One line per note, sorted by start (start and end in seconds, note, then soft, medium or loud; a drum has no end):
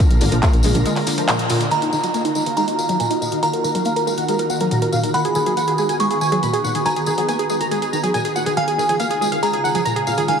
0.00 1.68 D3 medium
0.00 1.68 A#3 medium
0.00 1.68 F4 medium
0.00 1.68 A#4 medium
0.00 tambourine soft
0.11 0.19 A#1 medium
0.11 closed hi-hat medium
0.11 tambourine soft
0.21 0.30 G#1 medium
0.21 0.29 D3 medium
0.21 open hi-hat loud
0.21 tambourine medium
0.31 0.40 A#1 medium
0.31 0.37 F3 medium
0.31 closed hi-hat medium
0.31 tambourine soft
0.42 0.48 A#3 medium
0.42 kick loud
0.42 clap loud
0.42 closed hi-hat medium
0.42 tambourine soft
0.53 0.62 A#1 medium
0.53 closed hi-hat medium
0.53 tambourine soft
0.63 0.72 A#1 loud
0.63 0.69 G#3 medium
0.63 open hi-hat loud
0.63 tambourine loud
0.75 0.83 A#1 medium
0.75 0.80 D3 medium
0.75 closed hi-hat medium
0.75 tambourine soft
0.86 0.93 G#3 medium
0.86 closed hi-hat medium
0.86 tambourine soft
0.96 clap soft
0.96 open hi-hat medium
0.96 tambourine soft
1.07 1.15 D3 medium
1.07 open hi-hat loud
1.07 tambourine medium
1.18 1.23 F3 medium
1.18 closed hi-hat medium
1.18 tambourine soft
1.28 1.34 A#2 medium
1.28 clap loud
1.28 closed hi-hat medium
1.28 tambourine soft
1.39 closed hi-hat medium
1.39 tambourine soft
1.50 1.55 A#2 medium
1.50 open hi-hat loud
1.50 tambourine medium
1.60 1.66 D3 medium
1.60 closed hi-hat medium
1.60 tambourine soft
1.71 8.53 D#3 medium
1.71 1.76 D#3 medium
1.71 5.11 A#3 medium
1.71 5.11 F4 medium
1.71 8.53 F#4 medium
1.71 1.78 D#5 loud
1.71 2.48 A#5 medium
1.71 closed hi-hat medium
1.71 tambourine soft
1.81 1.89 D#4 medium
1.81 closed hi-hat medium
1.81 tambourine soft
1.93 2.00 D#3 medium
1.93 2.00 D#4 medium
1.93 tambourine medium
2.03 2.09 F#3 medium
2.03 2.10 D#4 medium
2.03 closed hi-hat medium
2.03 tambourine soft
2.14 2.19 A#3 medium
2.14 2.21 D#5 medium
2.14 closed hi-hat medium
2.14 tambourine soft
2.25 2.32 D#4 medium
2.25 closed hi-hat medium
2.25 tambourine soft
2.35 2.41 G#3 medium
2.35 2.42 D#4 medium
2.35 tambourine medium
2.46 2.51 D#3 medium
2.46 2.53 F5 medium
2.46 closed hi-hat medium
2.46 tambourine soft
2.57 2.65 G#3 medium
2.57 2.64 D#4 medium
2.57 3.34 A#5 medium
2.57 closed hi-hat medium
2.57 tambourine soft
2.67 2.75 D#4 medium
2.67 closed hi-hat medium
2.67 tambourine soft
2.78 2.86 D#3 medium
2.78 2.85 F5 medium
2.78 tambourine medium
2.89 2.94 F#3 medium
2.89 2.96 D#4 medium
2.89 closed hi-hat medium
2.89 tambourine soft
3.00 3.05 A#2 medium
3.00 3.07 G#5 medium
3.00 closed hi-hat medium
3.00 tambourine soft
3.11 3.18 D#4 medium
3.11 closed hi-hat medium
3.11 tambourine soft
3.21 3.26 A#2 medium
3.21 3.28 D#5 medium
3.21 tambourine medium
3.32 3.37 D#3 medium
3.32 3.39 D#4 medium
3.32 closed hi-hat medium
3.32 tambourine soft
3.43 3.48 D#3 medium
3.43 3.50 F5 medium
3.43 3.98 A#5 medium
3.43 closed hi-hat medium
3.43 tambourine soft
3.53 3.60 A#4 medium
3.53 closed hi-hat medium
3.53 tambourine soft
3.64 3.72 D#3 medium
3.64 3.71 A#4 medium
3.64 tambourine medium
3.75 3.80 F#3 medium
3.75 3.82 A#4 medium
3.75 closed hi-hat medium
3.75 tambourine soft
3.85 3.91 A#3 medium
3.85 3.93 F5 medium
3.85 closed hi-hat medium
3.85 tambourine soft
3.96 4.03 A#4 medium
3.96 closed hi-hat medium
3.96 tambourine soft
4.07 4.12 G#3 medium
4.07 4.14 A#4 medium
4.07 tambourine medium
4.17 4.23 D#3 medium
4.17 4.25 F#5 medium
4.17 closed hi-hat medium
4.17 tambourine soft
4.28 4.36 G#3 medium
4.28 4.36 A#4 medium
4.28 closed hi-hat medium
4.28 tambourine soft
4.39 4.46 A#4 medium
4.39 closed hi-hat medium
4.39 tambourine soft
4.50 4.58 D#3 medium
4.50 4.57 F#5 medium
4.50 tambourine medium
4.60 4.66 F#3 medium
4.60 4.68 A#4 medium
4.60 closed hi-hat medium
4.60 tambourine soft
4.71 4.76 A#2 medium
4.71 4.78 A#5 medium
4.71 closed hi-hat medium
4.71 tambourine soft
4.82 4.89 A#4 medium
4.82 closed hi-hat medium
4.82 tambourine soft
4.93 4.98 A#2 medium
4.93 5.00 F5 medium
4.93 tambourine medium
5.03 5.09 D#3 medium
5.03 5.10 A#4 medium
5.03 closed hi-hat medium
5.03 tambourine soft
5.14 5.19 D#3 medium
5.14 8.54 B3 medium
5.14 10.40 G#4 medium
5.14 5.21 F#5 loud
5.14 5.91 B5 medium
5.14 closed hi-hat medium
5.14 tambourine medium
5.25 5.32 G#4 medium
5.25 closed hi-hat medium
5.25 tambourine soft
5.35 5.43 D#3 medium
5.35 5.43 G#4 medium
5.35 tambourine loud
5.46 5.51 F#3 medium
5.46 5.53 G#4 medium
5.46 closed hi-hat medium
5.46 tambourine soft
5.57 5.62 A#3 medium
5.57 5.64 F#5 medium
5.57 closed hi-hat medium
5.57 tambourine soft
5.67 5.75 G#4 medium
5.67 closed hi-hat medium
5.67 tambourine soft
5.78 5.84 G#3 medium
5.78 5.85 G#4 medium
5.78 tambourine medium
5.89 5.94 D#3 medium
5.89 5.96 G#5 medium
5.89 closed hi-hat medium
5.89 tambourine soft
6.00 6.08 G#3 medium
6.00 6.07 G#4 medium
6.00 6.77 C#6 medium
6.00 closed hi-hat medium
6.00 tambourine medium
6.11 6.18 G#4 medium
6.11 closed hi-hat medium
6.11 tambourine soft
6.21 6.29 D#3 medium
6.21 6.28 G#5 medium
6.21 tambourine medium
6.32 6.37 F#3 medium
6.32 6.39 G#4 medium
6.32 closed hi-hat medium
6.32 tambourine soft
6.43 6.48 A#2 medium
6.43 6.50 B5 medium
6.43 closed hi-hat medium
6.43 tambourine medium
6.53 6.60 G#4 medium
6.53 closed hi-hat medium
6.53 tambourine soft
6.64 6.69 A#2 medium
6.64 6.71 F#5 medium
6.64 tambourine medium
6.75 6.80 D#3 medium
6.75 6.82 G#4 medium
6.75 closed hi-hat medium
6.75 tambourine soft
6.85 6.91 D#3 medium
6.85 6.93 G#5 loud
6.85 7.41 A#5 medium
6.85 closed hi-hat medium
6.85 tambourine soft
6.96 7.03 G#4 medium
6.96 closed hi-hat medium
6.96 tambourine soft
7.06 7.15 D#3 medium
7.06 7.14 G#4 medium
7.06 tambourine loud
7.18 7.23 F#3 medium
7.18 7.25 G#4 medium
7.18 closed hi-hat medium
7.18 tambourine soft
7.29 7.34 A#3 medium
7.29 7.35 G#5 medium
7.29 closed hi-hat medium
7.29 tambourine medium
7.39 7.46 G#4 medium
7.39 closed hi-hat medium
7.39 tambourine soft
7.50 7.55 G#3 medium
7.50 7.57 G#4 medium
7.50 tambourine medium
7.61 7.66 D#3 medium
7.61 7.68 A#5 medium
7.61 closed hi-hat medium
7.61 tambourine soft
7.71 7.79 G#3 medium
7.71 7.78 G#4 medium
7.71 closed hi-hat medium
7.71 tambourine soft
7.82 7.89 G#4 medium
7.82 closed hi-hat medium
7.82 tambourine soft
7.93 8.00 D#3 medium
7.93 8.00 A#5 medium
7.93 tambourine medium
8.03 8.09 F#3 medium
8.03 8.10 G#4 medium
8.03 closed hi-hat medium
8.03 tambourine soft
8.14 8.19 A#2 medium
8.14 8.21 G#5 medium
8.14 closed hi-hat medium
8.14 tambourine soft
8.25 8.32 G#4 medium
8.25 closed hi-hat medium
8.25 tambourine soft
8.36 8.41 A#2 medium
8.36 8.43 F#5 medium
8.36 tambourine medium
8.46 8.51 D#3 medium
8.46 8.53 G#4 medium
8.46 closed hi-hat medium
8.46 tambourine soft
8.57 10.40 C#3 medium
8.57 8.62 D#3 medium
8.57 10.40 G#3 medium
8.57 10.40 F4 medium
8.57 8.64 F5 loud
8.57 9.34 G#5 medium
8.57 closed hi-hat medium
8.57 tambourine soft
8.68 8.75 G#4 medium
8.68 closed hi-hat medium
8.68 tambourine soft
8.78 8.86 D#3 medium
8.78 8.85 G#4 medium
8.78 tambourine medium
8.89 8.94 F3 medium
8.89 8.96 G#4 medium
8.89 closed hi-hat medium
8.89 tambourine soft
8.99 9.05 A#3 medium
8.99 9.07 F5 loud
8.99 closed hi-hat medium
8.99 tambourine medium
9.10 9.17 G#4 medium
9.10 closed hi-hat medium
9.10 tambourine soft
9.21 9.26 G#3 medium
9.21 9.28 G#4 medium
9.21 tambourine medium
9.32 9.37 D#3 medium
9.32 9.39 F5 medium
9.32 closed hi-hat medium
9.32 tambourine soft
9.43 9.50 G#3 medium
9.43 9.50 G#4 medium
9.43 10.20 A#5 medium
9.43 closed hi-hat medium
9.43 tambourine soft
9.53 9.60 G#4 medium
9.53 closed hi-hat medium
9.53 tambourine soft
9.64 9.72 D#3 medium
9.64 9.71 F#5 medium
9.64 tambourine medium
9.75 9.80 F3 medium
9.75 9.82 G#4 medium
9.75 closed hi-hat medium
9.75 tambourine soft
9.85 9.91 A#2 medium
9.85 9.92 A#5 medium
9.85 closed hi-hat medium
9.85 tambourine medium
9.96 10.03 G#4 medium
9.96 closed hi-hat medium
9.96 tambourine soft
10.07 10.12 A#2 medium
10.07 10.14 F5 medium
10.07 tambourine medium
10.17 10.23 D#3 medium
10.17 10.25 G#4 medium
10.17 closed hi-hat medium
10.17 tambourine soft
10.28 10.33 D#3 medium
10.28 10.35 F5 loud
10.28 10.40 G#5 medium
10.28 closed hi-hat medium
10.28 tambourine soft